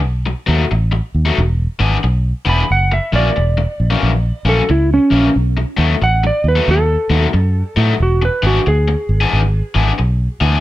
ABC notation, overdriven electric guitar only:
X:1
M:4/4
L:1/16
Q:"Swing" 1/4=91
K:E
V:1 name="Overdriven electric guitar"
z2 [B,,F,A,D] z4 [B,,F,A,D] z2 [E,B,=DG] z3 [E,B,DG] z | z2 [F,,E,^A,C] z4 [F,,E,A,C] z2 [F,,E,A,C] z3 [F,,E,A,C] z | z2 [B,,F,A,D] z4 [B,,F,A,D] z2 [B,,F,A,D] z3 [B,,F,A,D] z | z2 [E,B,=DG] z4 [E,B,DG] z2 [E,B,DG] z3 [E,B,DG] z |]